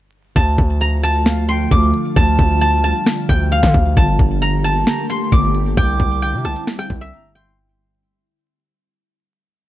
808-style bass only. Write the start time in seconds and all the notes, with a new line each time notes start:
0.36 D2
0.58 D2
1.71 D2
2.16 D2
2.39 D2
3.29 D2
3.63 D3
3.74 D2
3.97 G1
4.19 G1
5.32 G1
5.77 C2
6.00 C2
6.34 C3
6.45 C2
6.90 C2